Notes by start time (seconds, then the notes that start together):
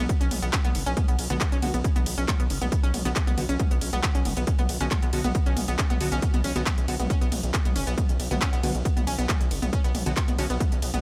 0.09 kick, closed hi-hat
0.21 B1 C#4, closed hi-hat
0.31 B1, mid tom, open hi-hat, ride
0.42 B1 B3, closed hi-hat
0.53 kick, clap, closed hi-hat
0.64 B1 B3, closed hi-hat, mid tom
0.75 F#1, open hi-hat, ride
0.86 B1 C#4, closed hi-hat
0.97 kick, closed hi-hat, mid tom
1.08 B1 B3, closed hi-hat
1.19 B1, open hi-hat, ride
1.30 B1 D3 B3 F#4, closed hi-hat, mid tom
1.41 kick, clap, closed hi-hat
1.52 B1 C#4, closed hi-hat
1.62 B1 D3 B3 F#4, mid tom, open hi-hat, ride
1.74 B1 B3, closed hi-hat
1.84 kick, closed hi-hat
1.96 B1 B3, closed hi-hat, mid tom
2.06 B1, open hi-hat, ride
2.18 B1 C#4, closed hi-hat
2.28 kick, clap, closed hi-hat, mid tom
2.40 B1 B3, closed hi-hat
2.50 F#1, open hi-hat, ride
2.61 B1 B3, closed hi-hat, mid tom
2.72 kick, closed hi-hat
2.83 B1 C#4, closed hi-hat
2.94 B1, mid tom, open hi-hat, ride
3.05 B1 D3 B3 F#4, closed hi-hat
3.16 kick, clap, closed hi-hat
3.27 B1 B3, closed hi-hat, mid tom
3.37 B1 D3 B3 F#4, open hi-hat, ride
3.49 B1 C#4, closed hi-hat
3.60 kick, closed hi-hat, mid tom
3.71 B1 B3, closed hi-hat
3.81 B1, open hi-hat, ride
3.93 B1 B3, closed hi-hat, mid tom
4.03 kick, clap, closed hi-hat
4.15 B1 C#4, closed hi-hat
4.25 F#1, mid tom, open hi-hat, ride
4.37 B1 B3, closed hi-hat
4.47 kick, closed hi-hat
4.59 B1 B3, closed hi-hat, mid tom
4.69 B1, open hi-hat, ride
4.80 B1 D3 B3 C#4 F#4, closed hi-hat
4.91 kick, clap, closed hi-hat, mid tom
5.02 B1 B3, closed hi-hat
5.13 B1 D3 B3 F#4, open hi-hat, ride
5.24 B1 B3, closed hi-hat, mid tom
5.35 kick, closed hi-hat
5.46 B1 C#4, closed hi-hat
5.57 B1, mid tom, open hi-hat, ride
5.68 B1 B3, closed hi-hat
5.79 kick, clap, closed hi-hat
5.90 B1 B3, closed hi-hat, mid tom
6.00 B1 D3 B3 F#4, open hi-hat, ride
6.12 B1 C#4, closed hi-hat
6.22 kick, closed hi-hat
6.34 B1 B3, closed hi-hat, mid tom
6.44 B1 C#4, open hi-hat, ride
6.56 B1 D3 B3 F#4, closed hi-hat
6.66 kick, clap, closed hi-hat, mid tom
6.78 B1, closed hi-hat
6.88 B1 D3 B3 F#4, open hi-hat, ride
6.99 B1 B3, closed hi-hat, mid tom
7.10 C#4, kick, closed hi-hat
7.21 B1 B3, closed hi-hat
7.32 B1, mid tom, open hi-hat, ride
7.43 B1, closed hi-hat
7.54 kick, clap, closed hi-hat
7.65 B1 B3, closed hi-hat, mid tom
7.76 F#1 C#4, open hi-hat, ride
7.87 B1 B3, closed hi-hat
7.98 kick, closed hi-hat, mid tom
8.09 B1, closed hi-hat
8.20 B1, open hi-hat, ride
8.31 B1 D3 B3 F#4, closed hi-hat, mid tom
8.41 C#4, kick, clap, closed hi-hat
8.53 B1 B3, closed hi-hat
8.63 B1 D3 B3 F#4, mid tom, open hi-hat, ride
8.75 B1, closed hi-hat
8.85 kick, closed hi-hat
8.97 B1 B3, closed hi-hat, mid tom
9.07 B1 C#4, open hi-hat, ride
9.18 B1 B3, closed hi-hat
9.29 kick, clap, closed hi-hat, mid tom
9.40 B1, closed hi-hat
9.51 F#1, open hi-hat, ride
9.62 B1 B3, closed hi-hat, mid tom
9.73 C#4, kick, closed hi-hat
9.84 B1 B3, closed hi-hat
9.95 B1, mid tom, open hi-hat, ride
10.06 B1 D3 B3 F#4, closed hi-hat
10.17 kick, clap, closed hi-hat
10.28 B1 B3, closed hi-hat, mid tom
10.38 B1 D3 B3 C#4 F#4, open hi-hat, ride
10.50 B1 B3, closed hi-hat
10.60 kick, closed hi-hat, mid tom
10.72 B1, closed hi-hat
10.82 B1, open hi-hat, ride
10.94 B1 B3, closed hi-hat, mid tom